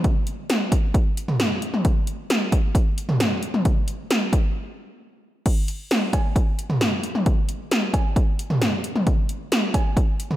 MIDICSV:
0, 0, Header, 1, 2, 480
1, 0, Start_track
1, 0, Tempo, 451128
1, 47, Time_signature, 4, 2, 24, 8
1, 11028, End_track
2, 0, Start_track
2, 0, Title_t, "Drums"
2, 46, Note_on_c, 9, 36, 119
2, 46, Note_on_c, 9, 42, 66
2, 152, Note_off_c, 9, 42, 0
2, 153, Note_off_c, 9, 36, 0
2, 285, Note_on_c, 9, 42, 78
2, 391, Note_off_c, 9, 42, 0
2, 527, Note_on_c, 9, 42, 77
2, 529, Note_on_c, 9, 38, 111
2, 634, Note_off_c, 9, 42, 0
2, 636, Note_off_c, 9, 38, 0
2, 764, Note_on_c, 9, 36, 91
2, 766, Note_on_c, 9, 42, 86
2, 871, Note_off_c, 9, 36, 0
2, 872, Note_off_c, 9, 42, 0
2, 1004, Note_on_c, 9, 36, 98
2, 1007, Note_on_c, 9, 42, 69
2, 1110, Note_off_c, 9, 36, 0
2, 1114, Note_off_c, 9, 42, 0
2, 1249, Note_on_c, 9, 42, 76
2, 1355, Note_off_c, 9, 42, 0
2, 1366, Note_on_c, 9, 45, 88
2, 1472, Note_off_c, 9, 45, 0
2, 1486, Note_on_c, 9, 38, 106
2, 1487, Note_on_c, 9, 42, 78
2, 1593, Note_off_c, 9, 38, 0
2, 1594, Note_off_c, 9, 42, 0
2, 1726, Note_on_c, 9, 42, 74
2, 1832, Note_off_c, 9, 42, 0
2, 1848, Note_on_c, 9, 47, 99
2, 1954, Note_off_c, 9, 47, 0
2, 1966, Note_on_c, 9, 42, 67
2, 1967, Note_on_c, 9, 36, 125
2, 2072, Note_off_c, 9, 42, 0
2, 2073, Note_off_c, 9, 36, 0
2, 2205, Note_on_c, 9, 42, 79
2, 2312, Note_off_c, 9, 42, 0
2, 2448, Note_on_c, 9, 42, 75
2, 2449, Note_on_c, 9, 38, 116
2, 2554, Note_off_c, 9, 42, 0
2, 2556, Note_off_c, 9, 38, 0
2, 2684, Note_on_c, 9, 36, 91
2, 2686, Note_on_c, 9, 42, 87
2, 2790, Note_off_c, 9, 36, 0
2, 2792, Note_off_c, 9, 42, 0
2, 2924, Note_on_c, 9, 36, 100
2, 2928, Note_on_c, 9, 42, 69
2, 3030, Note_off_c, 9, 36, 0
2, 3034, Note_off_c, 9, 42, 0
2, 3168, Note_on_c, 9, 42, 77
2, 3275, Note_off_c, 9, 42, 0
2, 3286, Note_on_c, 9, 45, 89
2, 3392, Note_off_c, 9, 45, 0
2, 3406, Note_on_c, 9, 38, 109
2, 3407, Note_on_c, 9, 42, 82
2, 3513, Note_off_c, 9, 38, 0
2, 3514, Note_off_c, 9, 42, 0
2, 3645, Note_on_c, 9, 42, 74
2, 3752, Note_off_c, 9, 42, 0
2, 3767, Note_on_c, 9, 47, 103
2, 3874, Note_off_c, 9, 47, 0
2, 3886, Note_on_c, 9, 42, 66
2, 3887, Note_on_c, 9, 36, 122
2, 3992, Note_off_c, 9, 42, 0
2, 3993, Note_off_c, 9, 36, 0
2, 4125, Note_on_c, 9, 42, 78
2, 4232, Note_off_c, 9, 42, 0
2, 4368, Note_on_c, 9, 42, 79
2, 4369, Note_on_c, 9, 38, 117
2, 4474, Note_off_c, 9, 42, 0
2, 4476, Note_off_c, 9, 38, 0
2, 4604, Note_on_c, 9, 36, 91
2, 4606, Note_on_c, 9, 42, 86
2, 4711, Note_off_c, 9, 36, 0
2, 4713, Note_off_c, 9, 42, 0
2, 5806, Note_on_c, 9, 42, 68
2, 5806, Note_on_c, 9, 49, 104
2, 5807, Note_on_c, 9, 36, 126
2, 5913, Note_off_c, 9, 36, 0
2, 5913, Note_off_c, 9, 42, 0
2, 5913, Note_off_c, 9, 49, 0
2, 6046, Note_on_c, 9, 42, 78
2, 6152, Note_off_c, 9, 42, 0
2, 6287, Note_on_c, 9, 42, 77
2, 6289, Note_on_c, 9, 38, 114
2, 6394, Note_off_c, 9, 42, 0
2, 6396, Note_off_c, 9, 38, 0
2, 6524, Note_on_c, 9, 36, 92
2, 6526, Note_on_c, 9, 42, 90
2, 6527, Note_on_c, 9, 56, 74
2, 6631, Note_off_c, 9, 36, 0
2, 6632, Note_off_c, 9, 42, 0
2, 6633, Note_off_c, 9, 56, 0
2, 6764, Note_on_c, 9, 36, 104
2, 6768, Note_on_c, 9, 42, 73
2, 6871, Note_off_c, 9, 36, 0
2, 6874, Note_off_c, 9, 42, 0
2, 7009, Note_on_c, 9, 42, 77
2, 7115, Note_off_c, 9, 42, 0
2, 7126, Note_on_c, 9, 45, 94
2, 7232, Note_off_c, 9, 45, 0
2, 7246, Note_on_c, 9, 38, 108
2, 7247, Note_on_c, 9, 42, 86
2, 7352, Note_off_c, 9, 38, 0
2, 7354, Note_off_c, 9, 42, 0
2, 7485, Note_on_c, 9, 42, 79
2, 7592, Note_off_c, 9, 42, 0
2, 7608, Note_on_c, 9, 47, 107
2, 7714, Note_off_c, 9, 47, 0
2, 7726, Note_on_c, 9, 42, 68
2, 7727, Note_on_c, 9, 36, 126
2, 7832, Note_off_c, 9, 42, 0
2, 7833, Note_off_c, 9, 36, 0
2, 7966, Note_on_c, 9, 42, 82
2, 8072, Note_off_c, 9, 42, 0
2, 8207, Note_on_c, 9, 42, 76
2, 8209, Note_on_c, 9, 38, 118
2, 8314, Note_off_c, 9, 42, 0
2, 8316, Note_off_c, 9, 38, 0
2, 8444, Note_on_c, 9, 36, 94
2, 8447, Note_on_c, 9, 42, 85
2, 8448, Note_on_c, 9, 56, 75
2, 8551, Note_off_c, 9, 36, 0
2, 8553, Note_off_c, 9, 42, 0
2, 8554, Note_off_c, 9, 56, 0
2, 8684, Note_on_c, 9, 36, 102
2, 8688, Note_on_c, 9, 42, 71
2, 8791, Note_off_c, 9, 36, 0
2, 8794, Note_off_c, 9, 42, 0
2, 8929, Note_on_c, 9, 42, 78
2, 9036, Note_off_c, 9, 42, 0
2, 9046, Note_on_c, 9, 45, 90
2, 9152, Note_off_c, 9, 45, 0
2, 9167, Note_on_c, 9, 38, 113
2, 9168, Note_on_c, 9, 42, 83
2, 9273, Note_off_c, 9, 38, 0
2, 9274, Note_off_c, 9, 42, 0
2, 9407, Note_on_c, 9, 42, 74
2, 9513, Note_off_c, 9, 42, 0
2, 9529, Note_on_c, 9, 47, 105
2, 9635, Note_off_c, 9, 47, 0
2, 9647, Note_on_c, 9, 36, 127
2, 9647, Note_on_c, 9, 42, 69
2, 9753, Note_off_c, 9, 42, 0
2, 9754, Note_off_c, 9, 36, 0
2, 9886, Note_on_c, 9, 42, 81
2, 9993, Note_off_c, 9, 42, 0
2, 10128, Note_on_c, 9, 42, 79
2, 10130, Note_on_c, 9, 38, 122
2, 10234, Note_off_c, 9, 42, 0
2, 10236, Note_off_c, 9, 38, 0
2, 10365, Note_on_c, 9, 36, 95
2, 10366, Note_on_c, 9, 42, 91
2, 10368, Note_on_c, 9, 56, 74
2, 10471, Note_off_c, 9, 36, 0
2, 10473, Note_off_c, 9, 42, 0
2, 10474, Note_off_c, 9, 56, 0
2, 10605, Note_on_c, 9, 36, 102
2, 10609, Note_on_c, 9, 42, 72
2, 10711, Note_off_c, 9, 36, 0
2, 10715, Note_off_c, 9, 42, 0
2, 10850, Note_on_c, 9, 42, 78
2, 10956, Note_off_c, 9, 42, 0
2, 10967, Note_on_c, 9, 45, 93
2, 11028, Note_off_c, 9, 45, 0
2, 11028, End_track
0, 0, End_of_file